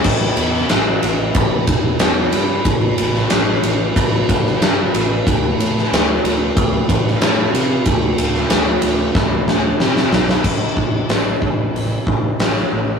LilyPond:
<<
  \new Staff \with { instrumentName = "Picked electric bass" } { \clef bass \time 4/4 \key d \dorian \tempo 4 = 92 a,,8 e,8 a,,8 a,,8 a,,8 e,,8 e,8 g,8 | a,,8 a,,8 a,,8 a,,8 a,,8 a,,8 g,8 a,,8 | d,8 a,8 d,8 d,8 d,8 a,,8 a,8 c8 | d,8 d,8 d,8 d,8 d,8 d,8 c8 b,,8 |
a,,8 a,,8 a,,8 a,,8 a,,8 a,,8 a,,8 a,,8 | }
  \new DrumStaff \with { instrumentName = "Drums" } \drummode { \time 4/4 <cymc bd>8 cymr16 sn16 <cymr sn>8 cymr8 <bd cymr>8 <bd cymr>8 <cymr sn>8 cymr8 | <bd cymr>8 cymr16 sn16 <cymr sn>8 cymr8 <bd cymr>8 <bd cymr>16 sn16 <cymr sn>8 cymr8 | <bd cymr>8 cymr16 sn16 <cymr sn>8 cymr8 <bd cymr>8 <bd cymr>16 sn16 <cymr sn>8 cymr8 | <bd cymr>8 cymr16 sn16 <cymr sn>8 cymr8 <bd sn>8 sn8 sn16 sn16 sn16 sn16 |
<cymc bd>8 bd8 <hho sn>8 bd8 hho8 bd8 <hho sn>16 sn8. | }
>>